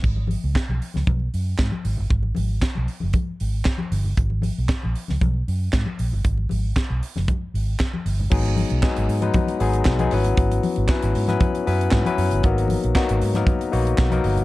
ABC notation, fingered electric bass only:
X:1
M:4/4
L:1/16
Q:1/4=116
K:G#m
V:1 name="Fingered electric bass" clef=bass
G,,,3 C,, z B,,, z C,, B,,,2 F,,2 G,, z G,,, =G,,, | G,,,2 G,,,2 z B,,, z F,,, z2 G,,,2 z2 =G,,,2 | G,,,3 B,,, z A,,, z C,, B,,,2 F,,2 G,, z A,,, =G,,, | G,,,2 G,,,2 z B,,, z F,,, z2 G,,,2 z2 =G,,,2 |
G,,,3 B,,, z G,,, G,,2 z2 G,,,2 B,,,2 G,,,2 | G,,,2 z G,,, z G,,, G,,2 z2 F,,2 G,, z F,, =G,,, | G,,,3 A,,, z G,,, G,,2 z2 A,,,2 B,,,2 =G,,,2 |]